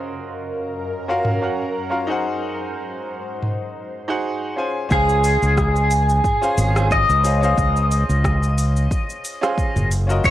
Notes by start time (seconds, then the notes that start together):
Already playing: F#2 C#4 F4 F#4 A#4 D#5
1.08 C#4 F4 F#4 A#4 F5
1.25 mid tom
1.41 C#4 F#4 A#4 F5 F#5
1.90 C#4 F4 F#4 A#4 F5
2.07 D#4 F#4 G#4 C5
2.11 F#5
2.24 G#2 F#3 C5
3.43 mid tom
4.08 D#4 F#4 G#4 C5 F#5
4.56 C#4 F4 G#4 C5 G#5
4.89 C#2 C#4 F4 G#4 C5, kick, shaker
4.93 F5
5.09 shaker
5.24 open hi-hat, shaker
5.42 C#2, shaker
5.58 kick, cross-stick, shaker
5.76 shaker
5.91 open hi-hat, shaker
6.09 shaker
6.24 kick, mid tom, shaker
6.41 C#4 F4 G#4 C5 F5, shaker
6.58 G#1, mid tom, open hi-hat, shaker
6.75 C#4 F4 G#4 C5 G#5, cross-stick, shaker
6.91 D#5, kick, shaker
7.09 C#2, shaker
7.23 C#4 F4 G#4 C5 F5, open hi-hat, shaker
7.41 C#4 F4 G#4 C5, shaker
7.45 F5
7.58 C#2, kick, shaker
7.77 shaker
7.92 open hi-hat, shaker
8.09 C#2, shaker
8.24 kick, cross-stick, shaker
8.43 shaker
8.58 open hi-hat, shaker
8.76 shaker
8.91 kick, shaker
9.10 shaker
9.25 open hi-hat, shaker
9.41 C#4 F4 G#4 C5 F5, cross-stick, shaker
9.58 kick, shaker
9.76 F#1, mid tom, shaker
9.91 open hi-hat, shaker
10.07 C#4 F4 F#4 A#4, shaker
10.11 D#5
10.24 F#1 C#5, kick, shaker